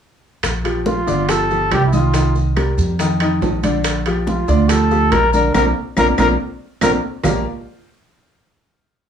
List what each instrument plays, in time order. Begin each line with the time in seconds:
0.43 upright bass A#1, high bongo, high conga, high timbale, claves, maracas
0.64 upright piano F3 F4 G4, high bongo, high conga, high timbale, maracas
0.86 trumpet F4, high bongo, high conga, low timbale, maracas
1.07 upright bass G1, upright piano D3 D4 D5, high bongo, high conga, maracas
1.29 upright piano F3 F4 G4, trumpet A4, high bongo, high conga, high timbale, claves, maracas
1.50 upright piano F3 F4 G4, high bongo, high conga, maracas
1.71 upright bass C2, trumpet G4, high bongo, low bongo, high conga, high timbale, low timbale, claves, maracas
1.86 trumpet E4
1.92 upright piano D#3 D#4 D#5, trumpet F4, high conga, maracas
2.14 upright piano D#3 D#4 D#5, high bongo, high conga, high timbale, maracas
2.35 high bongo, high conga, maracas
2.56 upright piano G3 G4 A#4, high bongo, high conga, high timbale, low timbale, claves, maracas
2.78 upright bass F2, high bongo, high conga, maracas
2.99 upright piano D#3 D#4 D#5, high bongo, high conga, high timbale, maracas
3.20 upright piano D#3 D#4 D#5, high bongo, high conga, high timbale, claves, maracas
3.42 upright bass A#1, high bongo, low bongo, high conga, low timbale, maracas
3.63 upright piano D3 D4 D5, high conga, high timbale, maracas
3.84 high bongo, high conga, high timbale, claves, maracas
4.06 upright piano F3 F4 G4, high bongo, high conga, high timbale, maracas
4.27 trumpet F4, high bongo, high conga, low timbale, maracas
4.48 upright bass D2, upright piano D3 D4 D5, high bongo, high conga, maracas
4.69 upright piano F3 F4 G4, trumpet A4, high bongo, high conga, high timbale, claves, maracas
4.91 upright piano F3 F4 G4, high bongo, high conga, maracas
5.11 upright bass A#1, trumpet A#4, high bongo, low bongo, high conga, high timbale, low timbale, claves, maracas
5.33 upright piano D3 D4 D5, trumpet A#4, high conga, maracas
5.54 upright bass A#1, upright piano A#3 D4 F4, trumpet A#4, low bongo, high conga, high timbale, claves, maracas
5.97 upright bass A#1, upright piano A#3 D4 F4, trumpet A#4, low bongo, high conga, high timbale, claves, maracas
6.18 upright bass A#1, upright piano A#3 D4 F4, trumpet A#4, low bongo, high conga, high timbale, claves, maracas
6.81 upright bass A#1, upright piano A#3 D4 F4, trumpet A#4, low bongo, high conga, high timbale, claves, maracas
7.23 upright bass A#1, upright piano A#3 F4 G4 A#4 D5 F5, low bongo, low conga, low timbale, claves, maracas